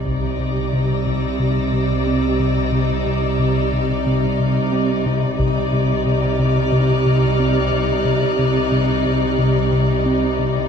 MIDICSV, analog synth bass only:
0, 0, Header, 1, 2, 480
1, 0, Start_track
1, 0, Tempo, 666667
1, 42, Time_signature, 4, 2, 24, 8
1, 7692, End_track
2, 0, Start_track
2, 0, Title_t, "Analog synth bass"
2, 0, Program_c, 0, 38
2, 38, Note_on_c, 0, 48, 72
2, 183, Note_off_c, 0, 48, 0
2, 284, Note_on_c, 0, 48, 51
2, 428, Note_off_c, 0, 48, 0
2, 527, Note_on_c, 0, 48, 54
2, 670, Note_off_c, 0, 48, 0
2, 767, Note_on_c, 0, 48, 54
2, 909, Note_off_c, 0, 48, 0
2, 1005, Note_on_c, 0, 48, 70
2, 1148, Note_off_c, 0, 48, 0
2, 1245, Note_on_c, 0, 48, 45
2, 1388, Note_off_c, 0, 48, 0
2, 1488, Note_on_c, 0, 60, 50
2, 1630, Note_off_c, 0, 60, 0
2, 1725, Note_on_c, 0, 48, 50
2, 1868, Note_off_c, 0, 48, 0
2, 1959, Note_on_c, 0, 48, 70
2, 2104, Note_off_c, 0, 48, 0
2, 2204, Note_on_c, 0, 48, 50
2, 2348, Note_off_c, 0, 48, 0
2, 2444, Note_on_c, 0, 48, 55
2, 2587, Note_off_c, 0, 48, 0
2, 2685, Note_on_c, 0, 48, 58
2, 2828, Note_off_c, 0, 48, 0
2, 2928, Note_on_c, 0, 48, 75
2, 3070, Note_off_c, 0, 48, 0
2, 3167, Note_on_c, 0, 48, 50
2, 3309, Note_off_c, 0, 48, 0
2, 3399, Note_on_c, 0, 60, 56
2, 3544, Note_off_c, 0, 60, 0
2, 3642, Note_on_c, 0, 48, 55
2, 3786, Note_off_c, 0, 48, 0
2, 3880, Note_on_c, 0, 48, 72
2, 4024, Note_off_c, 0, 48, 0
2, 4125, Note_on_c, 0, 48, 54
2, 4268, Note_off_c, 0, 48, 0
2, 4364, Note_on_c, 0, 48, 54
2, 4508, Note_off_c, 0, 48, 0
2, 4603, Note_on_c, 0, 48, 54
2, 4747, Note_off_c, 0, 48, 0
2, 4840, Note_on_c, 0, 48, 71
2, 4984, Note_off_c, 0, 48, 0
2, 5084, Note_on_c, 0, 48, 54
2, 5227, Note_off_c, 0, 48, 0
2, 5323, Note_on_c, 0, 60, 54
2, 5467, Note_off_c, 0, 60, 0
2, 5562, Note_on_c, 0, 48, 46
2, 5706, Note_off_c, 0, 48, 0
2, 5796, Note_on_c, 0, 48, 75
2, 5942, Note_off_c, 0, 48, 0
2, 6039, Note_on_c, 0, 48, 58
2, 6184, Note_off_c, 0, 48, 0
2, 6277, Note_on_c, 0, 48, 50
2, 6423, Note_off_c, 0, 48, 0
2, 6519, Note_on_c, 0, 48, 53
2, 6664, Note_off_c, 0, 48, 0
2, 6758, Note_on_c, 0, 48, 72
2, 6903, Note_off_c, 0, 48, 0
2, 7000, Note_on_c, 0, 48, 45
2, 7145, Note_off_c, 0, 48, 0
2, 7241, Note_on_c, 0, 60, 47
2, 7386, Note_off_c, 0, 60, 0
2, 7480, Note_on_c, 0, 48, 52
2, 7624, Note_off_c, 0, 48, 0
2, 7692, End_track
0, 0, End_of_file